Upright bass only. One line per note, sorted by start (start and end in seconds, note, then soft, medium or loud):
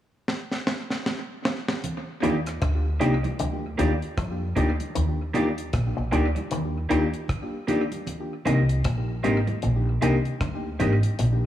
2.24 2.60 D#2 medium
2.63 2.98 D2 loud
3.02 3.23 C2 medium
3.41 3.76 D2 medium
3.80 4.01 D#2 medium
4.18 4.54 F2 medium
4.57 4.78 D2 medium
4.97 5.70 D#2 medium
5.74 5.95 A#1 medium
5.98 6.12 A#1 medium
6.13 6.34 D2 medium
6.53 6.88 D#2 loud
6.91 7.12 D#2 medium
8.47 8.83 C2 medium
8.86 9.22 A#1 medium
9.25 9.46 G#1 medium
9.65 10.00 A#1 medium
10.03 10.24 C2 medium
10.41 10.77 D2 medium
10.81 11.02 G#1 medium
11.20 11.46 A#1 loud